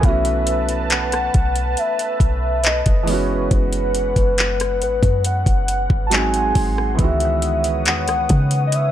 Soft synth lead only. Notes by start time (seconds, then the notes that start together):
0.04 E5
0.91 F#5
1.79 E5
2.66 D#5
3.09 C#5
3.53 B4
4.83 B4
5.26 F#5
6.07 A5
6.14 G#5
7.00 E5
7.87 F#5
8.67 D#5
8.74 E5